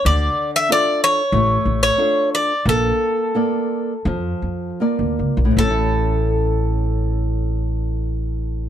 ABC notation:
X:1
M:4/4
L:1/16
Q:1/4=83
K:none
V:1 name="Bouzouki"
d3 e d2 ^c4- c c3 d2 | A12- A2 z2 | A16 |]
V:2 name="Nylon-string guitar"
D,4 [DFA]4 A,4 [DFA]4 | _B,4 [B,Fd]4 F,4 [B,Fd]4 | [A,,E,A,^CE]16 |]
V:3 name="Upright bass" clef=bass
D,,2 z6 A,,,2 A,,,2 z4 | _B,,,2 z6 F,,2 F,,2 z D,, ^C,, B,,, | A,,,16 |]